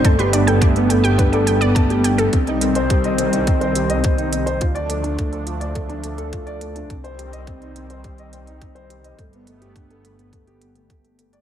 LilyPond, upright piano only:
\new Staff \with { instrumentName = "Upright piano" } { \time 4/4 \key c \dorian \tempo 4 = 105 a16 g'16 d'16 a'16 a16 b16 a16 g'16 d'16 a'16 a16 b16 a16 g'16 d'16 a'16 | c'16 ees'16 c'16 c''16 g'16 ees''16 c'16 ees'16 c'16 c''16 g'16 ees''16 c'16 ees'16 c'16 c''16 | f'16 d''16 a16 d'16 a16 a'16 f'16 d''16 a16 d'16 a16 a'16 f'16 d''16 a16 d'16 | c'16 c''16 g'16 ees''16 c'16 ees'16 c'16 c''16 g'16 ees''16 c'16 ees'16 c'16 c''16 g'16 ees''16 |
a16 b16 a16 g'16 d'16 a'16 a16 b16 a16 g'16 b16 a16 a16 a16 a16 d''16 | }